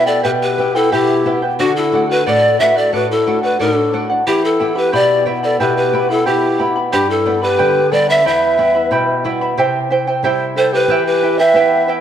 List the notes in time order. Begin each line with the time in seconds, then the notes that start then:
Already playing: B2 B3 E4 G4
0.06 E4 A4 B4 D5 G5
0.23 B2 E4 G4 B4 E5 G5
0.41 G4 B4
0.58 B3 E4 G4 B4 E5 G5
0.75 E4 A4 B4 G5
0.92 B2 E4 G4 B4 E5 G5
1.25 B3 E4 G4 B4 E5 G5
1.42 E4 B4 G5
1.59 D3 D4 F#4 A4 D5 F#5
1.76 E4 A4
1.92 A3 D4 F#4 A4 D5 F#5
2.09 F#4 B4 D5 F#5
2.25 A2 A4 B4 D5 F#5
2.29 A4
2.59 A3 D4 F#4 A4 B4 D5 E5 F#5
2.76 A4 D5 F#5
2.92 A2 F#4 A4 B4 D5 F#5
3.11 E4 A4
3.26 A3 D4 F#4 A4 D5 F#5
3.42 F#4 B4 D5 F#5
3.59 A2 D4 A4 D5 F#5
3.93 A3 D4 F#4 A4 D5 F#5
4.10 D5 F#5
4.27 E3 E4 G4 E5 G5 B5
4.43 E4 A4
4.59 B3 E4 G4 E5 G5 B5
4.75 E4 G4 B4 E5 B5
4.92 B2 E4 G4 D5 E5 G5 B5
5.26 B3 E4 G4 E5 G5 B5
5.43 E4 A4 D5 E5 B5
5.60 B2 E4 G4 B4 E5 G5 B5
5.77 G4 B4
5.93 B3 E4 G4 E5 G5 B5
6.09 E4 A4 E5 B5
6.26 B2 E4 F#4 G4 E5 G5 B5
6.31 E4
6.58 B3 E4 G4 E5 G5 B5
6.76 E4 E5 B5
6.92 G2 D4 G4 B4 D5 G5 B5
7.08 E4 A4
7.26 G3 B3 D4 B4 D5 G5 B5
7.42 G4 B4 D5 B5
7.58 D3 G4 B4 D5 G5 B5
7.92 G3 B3 D4 A4 B4 D5 G5 B5
8.09 B4 D5 E5 B5
8.25 E2 E4 G4 C5 E5 G5 B5
8.29 B4
8.58 G3 B3 E4 E5 G5 B5
8.75 E4 E5 B5
8.91 B2 E4 G4 E5 G5 B5
9.24 G3 B3 E4 E5 G5 B5
9.41 E4 E5 B5
9.58 C3 E4 G4 C5 E5 G5
9.90 E4 C5 E5 G5
10.07 E4 C5 G5
10.23 G3 C4 E4 G4 C5 E5 G5
10.56 E4 A4 C5 E5 G5
10.73 E4 G4 B4 C5 G5
10.88 E3 E4 G4 B4 E5 G5
11.06 G4 B4
11.23 E4 B4 E5 G5
11.39 E4 B4 E5 G5
11.54 B3 E4 G4 B4 E5 G5
11.88 E4 B4 E5 G5